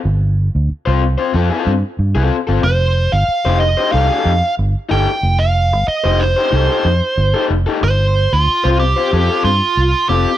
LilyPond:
<<
  \new Staff \with { instrumentName = "Lead electric guitar" } { \time 4/4 \key g \dorian \tempo 4 = 92 r1 | c''8. f''8. ees''8 f''4 r8 g''8~ | g''16 f''8. ees''8 c''2 r8 | c''8. f'8. g'4 f'4 g'8 | }
  \new Staff \with { instrumentName = "Overdriven electric guitar" } { \time 4/4 \key g \dorian r4 r16 <c' f' c''>16 r16 <c' f' c''>16 <c' f' a'>16 <c' f' a'>16 r8. <c' f' a'>16 r16 <c' f' a'>16 | r4 r16 <ees' g' c''>16 r16 <ees' g' c''>16 <ees' g' a'>16 <ees' g' a'>16 r4 <ees' g' a'>16 r16 | r4 r16 <ees' g' c''>16 r16 <ees' g' c''>16 <ees' g' a'>16 <ees' g' a'>16 r8. <ees' g' a'>16 r16 <ees' g' a'>16 | r4 r16 <c' f' c''>16 r16 <c' f' c''>16 <c' f' a'>16 <c' f' a'>16 r4 <c' f' a'>16 r16 | }
  \new Staff \with { instrumentName = "Fingered electric bass" } { \clef bass \time 4/4 \key g \dorian g,,8. d,16 r16 c,8 r16 f,16 r16 g,16 r16 g,16 c,16 r16 g,,16 | f,,8. g,,16 r16 f,,8 r16 c,16 r16 f,16 r16 g,,16 r16 g,,16 r16 | f,,8. g,,16 r16 f,,8 r16 c,16 r16 f,16 r16 g,,16 r16 f,,16 r16 | g,,8. d,16 r16 c,8 r16 f,16 r16 g,16 r16 c,16 r16 f,,16 r16 | }
>>